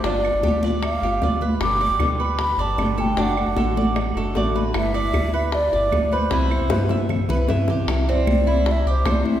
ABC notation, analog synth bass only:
X:1
M:4/4
L:1/16
Q:1/4=153
K:C
V:1 name="Analog synth bass" clef=bass
G,,,3 G,,, D,,6 G,,,2 D,,4 | G,,,3 G,,, D,,6 G,,,2 G,,,4 | ^F,,,3 F,,, A,,,6 F,,,2 A,,,4 | G,,,3 G,,, D,,6 G,,,2 D,,4 |
C,,3 C,, G,,6 C,,2 G,,4 | C,,4 C,,2 C,,4 C,,2 C,,2 z2 |]